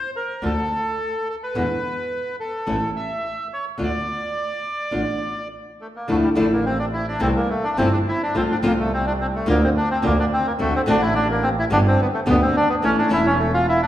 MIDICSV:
0, 0, Header, 1, 4, 480
1, 0, Start_track
1, 0, Key_signature, -1, "minor"
1, 0, Tempo, 560748
1, 1330, Time_signature, 4, 2, 24, 8
1, 3720, Tempo, 571429
1, 7080, Tempo, 560224
1, 11816, End_track
2, 0, Start_track
2, 0, Title_t, "Bandoneon"
2, 0, Program_c, 0, 23
2, 0, Note_on_c, 0, 72, 80
2, 89, Note_off_c, 0, 72, 0
2, 139, Note_on_c, 0, 70, 62
2, 380, Note_off_c, 0, 70, 0
2, 387, Note_on_c, 0, 69, 74
2, 1098, Note_off_c, 0, 69, 0
2, 1111, Note_on_c, 0, 69, 64
2, 1160, Note_off_c, 0, 69, 0
2, 1227, Note_on_c, 0, 71, 71
2, 2020, Note_off_c, 0, 71, 0
2, 2056, Note_on_c, 0, 69, 69
2, 2494, Note_off_c, 0, 69, 0
2, 2537, Note_on_c, 0, 76, 69
2, 2974, Note_off_c, 0, 76, 0
2, 3024, Note_on_c, 0, 73, 63
2, 3126, Note_off_c, 0, 73, 0
2, 3280, Note_on_c, 0, 74, 76
2, 4671, Note_off_c, 0, 74, 0
2, 4952, Note_on_c, 0, 57, 57
2, 5001, Note_off_c, 0, 57, 0
2, 5075, Note_on_c, 0, 58, 60
2, 5175, Note_off_c, 0, 58, 0
2, 5194, Note_on_c, 0, 57, 89
2, 5243, Note_off_c, 0, 57, 0
2, 5307, Note_on_c, 0, 55, 81
2, 5357, Note_off_c, 0, 55, 0
2, 5433, Note_on_c, 0, 57, 82
2, 5544, Note_off_c, 0, 57, 0
2, 5555, Note_on_c, 0, 58, 83
2, 5654, Note_off_c, 0, 58, 0
2, 5662, Note_on_c, 0, 60, 88
2, 5767, Note_off_c, 0, 60, 0
2, 5775, Note_on_c, 0, 62, 83
2, 5828, Note_off_c, 0, 62, 0
2, 5894, Note_on_c, 0, 64, 85
2, 6002, Note_off_c, 0, 64, 0
2, 6019, Note_on_c, 0, 62, 88
2, 6125, Note_off_c, 0, 62, 0
2, 6131, Note_on_c, 0, 60, 91
2, 6184, Note_off_c, 0, 60, 0
2, 6251, Note_on_c, 0, 58, 87
2, 6360, Note_off_c, 0, 58, 0
2, 6368, Note_on_c, 0, 57, 82
2, 6486, Note_on_c, 0, 62, 92
2, 6490, Note_off_c, 0, 57, 0
2, 6597, Note_off_c, 0, 62, 0
2, 6603, Note_on_c, 0, 60, 101
2, 6724, Note_on_c, 0, 62, 86
2, 6726, Note_off_c, 0, 60, 0
2, 6778, Note_off_c, 0, 62, 0
2, 6861, Note_on_c, 0, 64, 101
2, 6974, Note_off_c, 0, 64, 0
2, 6984, Note_on_c, 0, 62, 89
2, 7084, Note_off_c, 0, 62, 0
2, 7097, Note_on_c, 0, 60, 95
2, 7148, Note_off_c, 0, 60, 0
2, 7225, Note_on_c, 0, 62, 94
2, 7274, Note_off_c, 0, 62, 0
2, 7353, Note_on_c, 0, 58, 92
2, 7400, Note_off_c, 0, 58, 0
2, 7467, Note_on_c, 0, 57, 86
2, 7568, Note_off_c, 0, 57, 0
2, 7588, Note_on_c, 0, 60, 93
2, 7688, Note_off_c, 0, 60, 0
2, 7699, Note_on_c, 0, 62, 93
2, 7750, Note_off_c, 0, 62, 0
2, 7819, Note_on_c, 0, 60, 82
2, 7870, Note_off_c, 0, 60, 0
2, 7945, Note_on_c, 0, 57, 83
2, 8046, Note_off_c, 0, 57, 0
2, 8061, Note_on_c, 0, 58, 100
2, 8175, Note_off_c, 0, 58, 0
2, 8190, Note_on_c, 0, 60, 93
2, 8238, Note_off_c, 0, 60, 0
2, 8301, Note_on_c, 0, 62, 97
2, 8404, Note_off_c, 0, 62, 0
2, 8419, Note_on_c, 0, 60, 101
2, 8534, Note_off_c, 0, 60, 0
2, 8546, Note_on_c, 0, 58, 105
2, 8646, Note_off_c, 0, 58, 0
2, 8664, Note_on_c, 0, 62, 98
2, 8713, Note_off_c, 0, 62, 0
2, 8782, Note_on_c, 0, 60, 103
2, 8895, Note_off_c, 0, 60, 0
2, 8897, Note_on_c, 0, 58, 95
2, 8948, Note_off_c, 0, 58, 0
2, 9017, Note_on_c, 0, 57, 105
2, 9133, Note_off_c, 0, 57, 0
2, 9149, Note_on_c, 0, 60, 96
2, 9197, Note_off_c, 0, 60, 0
2, 9265, Note_on_c, 0, 62, 106
2, 9365, Note_off_c, 0, 62, 0
2, 9366, Note_on_c, 0, 64, 102
2, 9475, Note_off_c, 0, 64, 0
2, 9482, Note_on_c, 0, 62, 105
2, 9592, Note_off_c, 0, 62, 0
2, 9619, Note_on_c, 0, 58, 100
2, 9723, Note_on_c, 0, 60, 103
2, 9732, Note_off_c, 0, 58, 0
2, 9776, Note_off_c, 0, 60, 0
2, 9863, Note_on_c, 0, 64, 102
2, 9912, Note_off_c, 0, 64, 0
2, 9977, Note_on_c, 0, 62, 111
2, 10027, Note_off_c, 0, 62, 0
2, 10106, Note_on_c, 0, 60, 102
2, 10216, Note_off_c, 0, 60, 0
2, 10223, Note_on_c, 0, 59, 99
2, 10272, Note_off_c, 0, 59, 0
2, 10330, Note_on_c, 0, 57, 95
2, 10382, Note_off_c, 0, 57, 0
2, 10465, Note_on_c, 0, 59, 109
2, 10564, Note_off_c, 0, 59, 0
2, 10573, Note_on_c, 0, 60, 93
2, 10689, Note_off_c, 0, 60, 0
2, 10695, Note_on_c, 0, 62, 106
2, 10798, Note_off_c, 0, 62, 0
2, 10805, Note_on_c, 0, 59, 96
2, 10857, Note_off_c, 0, 59, 0
2, 10932, Note_on_c, 0, 61, 113
2, 11036, Note_off_c, 0, 61, 0
2, 11053, Note_on_c, 0, 62, 98
2, 11157, Note_off_c, 0, 62, 0
2, 11180, Note_on_c, 0, 64, 111
2, 11292, Note_off_c, 0, 64, 0
2, 11294, Note_on_c, 0, 61, 106
2, 11398, Note_off_c, 0, 61, 0
2, 11399, Note_on_c, 0, 57, 94
2, 11511, Note_off_c, 0, 57, 0
2, 11528, Note_on_c, 0, 65, 104
2, 11636, Note_off_c, 0, 65, 0
2, 11657, Note_on_c, 0, 64, 102
2, 11762, Note_off_c, 0, 64, 0
2, 11774, Note_on_c, 0, 62, 99
2, 11816, Note_off_c, 0, 62, 0
2, 11816, End_track
3, 0, Start_track
3, 0, Title_t, "Nylon-string guitar"
3, 0, Program_c, 1, 24
3, 358, Note_on_c, 1, 50, 69
3, 361, Note_on_c, 1, 57, 69
3, 368, Note_on_c, 1, 62, 69
3, 373, Note_on_c, 1, 65, 75
3, 438, Note_off_c, 1, 50, 0
3, 440, Note_off_c, 1, 57, 0
3, 443, Note_off_c, 1, 62, 0
3, 445, Note_off_c, 1, 65, 0
3, 1327, Note_on_c, 1, 47, 74
3, 1329, Note_on_c, 1, 50, 69
3, 1333, Note_on_c, 1, 59, 74
3, 1334, Note_on_c, 1, 56, 77
3, 1337, Note_on_c, 1, 64, 71
3, 1404, Note_off_c, 1, 47, 0
3, 1405, Note_off_c, 1, 50, 0
3, 1407, Note_off_c, 1, 56, 0
3, 1407, Note_off_c, 1, 59, 0
3, 1409, Note_off_c, 1, 64, 0
3, 2281, Note_on_c, 1, 52, 69
3, 2284, Note_on_c, 1, 57, 74
3, 2287, Note_on_c, 1, 61, 74
3, 2288, Note_on_c, 1, 64, 83
3, 2358, Note_off_c, 1, 52, 0
3, 2360, Note_off_c, 1, 57, 0
3, 2361, Note_off_c, 1, 61, 0
3, 2362, Note_off_c, 1, 64, 0
3, 3233, Note_on_c, 1, 50, 71
3, 3240, Note_on_c, 1, 57, 69
3, 3243, Note_on_c, 1, 62, 74
3, 3247, Note_on_c, 1, 65, 78
3, 3312, Note_off_c, 1, 50, 0
3, 3315, Note_off_c, 1, 57, 0
3, 3317, Note_off_c, 1, 62, 0
3, 3319, Note_off_c, 1, 65, 0
3, 4195, Note_on_c, 1, 50, 65
3, 4200, Note_on_c, 1, 57, 73
3, 4202, Note_on_c, 1, 62, 64
3, 4205, Note_on_c, 1, 65, 74
3, 4273, Note_off_c, 1, 50, 0
3, 4275, Note_off_c, 1, 57, 0
3, 4277, Note_off_c, 1, 62, 0
3, 4278, Note_off_c, 1, 65, 0
3, 5175, Note_on_c, 1, 50, 74
3, 5177, Note_on_c, 1, 53, 65
3, 5181, Note_on_c, 1, 57, 74
3, 5183, Note_on_c, 1, 62, 76
3, 5189, Note_on_c, 1, 64, 77
3, 5317, Note_off_c, 1, 50, 0
3, 5318, Note_off_c, 1, 53, 0
3, 5319, Note_off_c, 1, 57, 0
3, 5321, Note_off_c, 1, 62, 0
3, 5324, Note_off_c, 1, 64, 0
3, 5407, Note_on_c, 1, 50, 91
3, 5412, Note_on_c, 1, 53, 89
3, 5415, Note_on_c, 1, 57, 91
3, 5417, Note_on_c, 1, 62, 97
3, 5419, Note_on_c, 1, 64, 99
3, 5484, Note_off_c, 1, 50, 0
3, 5487, Note_off_c, 1, 53, 0
3, 5488, Note_off_c, 1, 57, 0
3, 5489, Note_off_c, 1, 62, 0
3, 5490, Note_off_c, 1, 64, 0
3, 6114, Note_on_c, 1, 48, 90
3, 6119, Note_on_c, 1, 52, 90
3, 6119, Note_on_c, 1, 60, 97
3, 6121, Note_on_c, 1, 57, 91
3, 6123, Note_on_c, 1, 64, 103
3, 6196, Note_off_c, 1, 48, 0
3, 6199, Note_off_c, 1, 52, 0
3, 6199, Note_off_c, 1, 60, 0
3, 6200, Note_off_c, 1, 57, 0
3, 6201, Note_off_c, 1, 64, 0
3, 6600, Note_on_c, 1, 48, 93
3, 6604, Note_on_c, 1, 52, 92
3, 6607, Note_on_c, 1, 57, 86
3, 6610, Note_on_c, 1, 60, 91
3, 6613, Note_on_c, 1, 64, 106
3, 6678, Note_off_c, 1, 48, 0
3, 6680, Note_off_c, 1, 52, 0
3, 6682, Note_off_c, 1, 57, 0
3, 6683, Note_off_c, 1, 60, 0
3, 6685, Note_off_c, 1, 64, 0
3, 7080, Note_on_c, 1, 48, 72
3, 7082, Note_on_c, 1, 57, 73
3, 7084, Note_on_c, 1, 53, 76
3, 7088, Note_on_c, 1, 60, 85
3, 7091, Note_on_c, 1, 65, 82
3, 7226, Note_off_c, 1, 48, 0
3, 7227, Note_off_c, 1, 57, 0
3, 7228, Note_off_c, 1, 53, 0
3, 7230, Note_off_c, 1, 60, 0
3, 7231, Note_off_c, 1, 65, 0
3, 7319, Note_on_c, 1, 48, 97
3, 7322, Note_on_c, 1, 53, 94
3, 7328, Note_on_c, 1, 57, 98
3, 7329, Note_on_c, 1, 60, 108
3, 7330, Note_on_c, 1, 65, 105
3, 7397, Note_off_c, 1, 48, 0
3, 7399, Note_off_c, 1, 53, 0
3, 7402, Note_off_c, 1, 57, 0
3, 7403, Note_off_c, 1, 60, 0
3, 7403, Note_off_c, 1, 65, 0
3, 8036, Note_on_c, 1, 50, 99
3, 8042, Note_on_c, 1, 58, 93
3, 8046, Note_on_c, 1, 62, 105
3, 8050, Note_on_c, 1, 65, 111
3, 8116, Note_off_c, 1, 50, 0
3, 8119, Note_off_c, 1, 58, 0
3, 8121, Note_off_c, 1, 62, 0
3, 8123, Note_off_c, 1, 65, 0
3, 8517, Note_on_c, 1, 50, 98
3, 8520, Note_on_c, 1, 58, 95
3, 8524, Note_on_c, 1, 62, 92
3, 8527, Note_on_c, 1, 65, 109
3, 8596, Note_off_c, 1, 50, 0
3, 8598, Note_off_c, 1, 58, 0
3, 8599, Note_off_c, 1, 62, 0
3, 8601, Note_off_c, 1, 65, 0
3, 9000, Note_on_c, 1, 50, 77
3, 9005, Note_on_c, 1, 57, 78
3, 9009, Note_on_c, 1, 60, 80
3, 9010, Note_on_c, 1, 66, 79
3, 9145, Note_off_c, 1, 50, 0
3, 9148, Note_off_c, 1, 57, 0
3, 9150, Note_off_c, 1, 60, 0
3, 9150, Note_off_c, 1, 66, 0
3, 9235, Note_on_c, 1, 50, 103
3, 9243, Note_on_c, 1, 57, 102
3, 9246, Note_on_c, 1, 60, 111
3, 9251, Note_on_c, 1, 66, 114
3, 9314, Note_off_c, 1, 50, 0
3, 9318, Note_off_c, 1, 57, 0
3, 9320, Note_off_c, 1, 60, 0
3, 9322, Note_off_c, 1, 66, 0
3, 9954, Note_on_c, 1, 47, 98
3, 9959, Note_on_c, 1, 50, 105
3, 9961, Note_on_c, 1, 55, 98
3, 9970, Note_on_c, 1, 59, 93
3, 9971, Note_on_c, 1, 67, 113
3, 10033, Note_off_c, 1, 47, 0
3, 10035, Note_off_c, 1, 50, 0
3, 10036, Note_off_c, 1, 55, 0
3, 10041, Note_off_c, 1, 59, 0
3, 10041, Note_off_c, 1, 67, 0
3, 10432, Note_on_c, 1, 47, 90
3, 10437, Note_on_c, 1, 50, 104
3, 10439, Note_on_c, 1, 59, 108
3, 10440, Note_on_c, 1, 55, 104
3, 10443, Note_on_c, 1, 67, 105
3, 10511, Note_off_c, 1, 47, 0
3, 10514, Note_off_c, 1, 50, 0
3, 10515, Note_off_c, 1, 59, 0
3, 10516, Note_off_c, 1, 55, 0
3, 10517, Note_off_c, 1, 67, 0
3, 10915, Note_on_c, 1, 52, 76
3, 10920, Note_on_c, 1, 57, 83
3, 10926, Note_on_c, 1, 61, 84
3, 10928, Note_on_c, 1, 64, 84
3, 11059, Note_off_c, 1, 52, 0
3, 11062, Note_off_c, 1, 57, 0
3, 11065, Note_off_c, 1, 61, 0
3, 11066, Note_off_c, 1, 64, 0
3, 11147, Note_on_c, 1, 52, 92
3, 11152, Note_on_c, 1, 57, 102
3, 11157, Note_on_c, 1, 61, 104
3, 11160, Note_on_c, 1, 64, 103
3, 11228, Note_off_c, 1, 52, 0
3, 11231, Note_off_c, 1, 57, 0
3, 11233, Note_off_c, 1, 61, 0
3, 11235, Note_off_c, 1, 64, 0
3, 11816, End_track
4, 0, Start_track
4, 0, Title_t, "Double bass"
4, 0, Program_c, 2, 43
4, 364, Note_on_c, 2, 38, 79
4, 567, Note_off_c, 2, 38, 0
4, 1324, Note_on_c, 2, 40, 72
4, 1527, Note_off_c, 2, 40, 0
4, 2290, Note_on_c, 2, 33, 83
4, 2487, Note_off_c, 2, 33, 0
4, 3243, Note_on_c, 2, 38, 71
4, 3442, Note_off_c, 2, 38, 0
4, 4201, Note_on_c, 2, 33, 75
4, 4402, Note_off_c, 2, 33, 0
4, 5183, Note_on_c, 2, 38, 65
4, 5378, Note_off_c, 2, 38, 0
4, 5414, Note_on_c, 2, 33, 99
4, 6093, Note_off_c, 2, 33, 0
4, 6126, Note_on_c, 2, 36, 107
4, 6327, Note_off_c, 2, 36, 0
4, 6600, Note_on_c, 2, 31, 97
4, 6802, Note_off_c, 2, 31, 0
4, 7079, Note_on_c, 2, 36, 67
4, 7283, Note_off_c, 2, 36, 0
4, 7323, Note_on_c, 2, 36, 112
4, 8007, Note_off_c, 2, 36, 0
4, 8043, Note_on_c, 2, 38, 110
4, 8244, Note_off_c, 2, 38, 0
4, 8529, Note_on_c, 2, 38, 111
4, 8727, Note_off_c, 2, 38, 0
4, 9012, Note_on_c, 2, 38, 65
4, 9209, Note_off_c, 2, 38, 0
4, 9250, Note_on_c, 2, 33, 114
4, 9927, Note_off_c, 2, 33, 0
4, 9967, Note_on_c, 2, 31, 119
4, 10164, Note_off_c, 2, 31, 0
4, 10448, Note_on_c, 2, 38, 109
4, 10644, Note_off_c, 2, 38, 0
4, 10925, Note_on_c, 2, 33, 65
4, 11122, Note_off_c, 2, 33, 0
4, 11158, Note_on_c, 2, 28, 110
4, 11816, Note_off_c, 2, 28, 0
4, 11816, End_track
0, 0, End_of_file